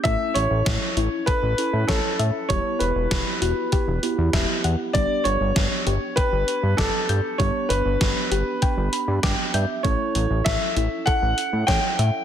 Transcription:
<<
  \new Staff \with { instrumentName = "Grand piano" } { \time 4/4 \key a \mixolydian \tempo 4 = 98 e''8 cis''4. b'4 a'4 | cis''8 b'2 r4. | d''8 cis''4. b'4 a'4 | cis''8 b'2 r4. |
cis''4 e''4 fis''4 g''4 | }
  \new Staff \with { instrumentName = "Synth pluck" } { \time 4/4 \key a \mixolydian a8 r4 e'8 a'8 r8 cis''8 e''8 | g8 r4 fis'8 g'8 r8 e''8 fis''8 | g8 r4 g'8 g''8 r8 d'''8 g'''8 | g8 r4 g'8 g''8 r8 d'''8 g'''8 |
a8 r4 e'8 a'8 r8 cis''8 e''8 | }
  \new Staff \with { instrumentName = "Synth keys" } { \time 4/4 \key a \mixolydian << { r1 | r1 | r1 | r2 r8 b''8 g''8 e''8 |
r1 | } \\ { <cis' e' a'>2~ <cis' e' a'>8 <cis' e' a'>4. | <b e' g'>2~ <b e' g'>8 <b e' g'>4. | <b d' g'>1 | <b d' g'>1 |
<cis' e' a'>1 | } >> }
  \new Staff \with { instrumentName = "Analog synth bass" } { \clef bass \time 4/4 \key a \mixolydian a,,16 r16 a,,16 a,,16 a,,16 r16 a,,16 r8 a,,16 r16 a,16 a,,16 r16 a,16 r16 | e,,16 r16 e,,16 e,,16 e,,16 r16 e,,16 r8 e,,16 r16 e,16 e,,16 r16 e,16 r16 | g,,16 r16 g,,16 g,,16 g,,16 r16 g,,16 r8 g,,16 r16 g,16 g,,16 r16 g,16 r16 | g,,16 r16 g,,16 g,,16 g,,16 r16 g,,16 r8 g,,16 r16 g,16 g,,16 r16 g,16 r16 |
a,,16 r16 a,,16 a,,16 a,,16 r16 a,,16 r8 a,,16 r16 a,16 a,,16 r16 a,16 r16 | }
  \new DrumStaff \with { instrumentName = "Drums" } \drummode { \time 4/4 <hh bd>8 hh8 <hh bd sn>8 hh8 <hh bd>8 hh8 <hh bd sn>8 hh8 | <hh bd>8 hh8 <hh bd sn>8 hh8 <hh bd>8 hh8 <hh bd sn>8 hh8 | <hh bd>8 hh8 <hh bd sn>8 hh8 <hh bd>8 hh8 <hh bd sn>8 hh8 | <hh bd>8 hh8 <hh bd sn>8 hh8 <hh bd>8 hh8 <hh bd sn>8 hh8 |
<hh bd>8 hh8 <hh bd sn>8 hh8 <hh bd>8 hh8 <hh bd sn>8 hh8 | }
>>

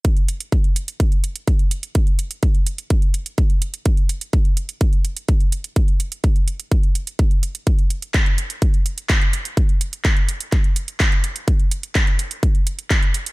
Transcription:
\new DrumStaff \with { instrumentName = "Drums" } \drummode { \time 4/4 \tempo 4 = 126 <hh bd>16 hh16 hh16 hh16 <hh bd>16 hh16 hh16 hh16 <hh bd>16 hh16 hh16 hh16 <hh bd>16 hh16 hh16 hh16 | <hh bd>16 hh16 hh16 hh16 <hh bd>16 hh16 hh16 hh16 <hh bd>16 hh16 hh16 hh16 <hh bd>16 hh16 hh16 hh16 | <hh bd>16 hh16 hh16 hh16 <hh bd>16 hh16 hh16 hh16 <hh bd>16 hh16 hh16 hh16 <hh bd>16 hh16 hh16 hh16 | <hh bd>16 hh16 hh16 hh16 <hh bd>16 hh16 hh16 hh16 <hh bd>16 hh16 hh16 hh16 <hh bd>16 hh16 hh16 hh16 |
<hh bd>16 hh16 hh16 hh16 <hc hh bd>16 hh16 hh16 hh16 <hh bd>16 hh16 hh16 hh16 <hc hh bd>16 hh16 hh16 hh16 | <hh bd>16 hh16 hh16 hh16 <hc hh bd>16 hh16 hh16 hh16 <hc hh bd>16 hh16 hh16 hh16 <hc hh bd>16 hh16 hh16 hh16 | <hh bd>16 hh16 hh16 hh16 <hc hh bd>16 hh16 hh16 hh16 <hh bd>16 hh16 hh16 hh16 <hc hh bd>16 hh16 hh16 hh16 | }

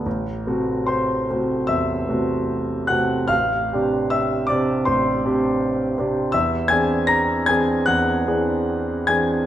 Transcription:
\new Staff \with { instrumentName = "Grand piano" } { \time 4/4 \key e \phrygian \tempo 4 = 76 << { r4 <c'' c'''>4 <e'' e'''>4. <fis'' fis'''>8 | <f'' f'''>4 <e'' e'''>8 <d'' d'''>8 <c'' c'''>4. r8 | <e'' e'''>8 <gis'' gis'''>8 <bes'' bes'''>8 <gis'' gis'''>8 <fis'' fis'''>4. <gis'' gis'''>8 | } \\ { a,,8 <c a c' fis'>4 <c a c' fis'>8 e,8 <c a c' fis'>4 <c a c' fis'>8 | a,,8 <c c' d' g'>4 <c c' d' g'>8 a,,8 <c c' d' g'>4 <c c' d' g'>8 | e,8 <e bis d' gis'>4 <e bis d' gis'>8 e,8 <e bis d' gis'>4 <e bis d' gis'>8 | } >> }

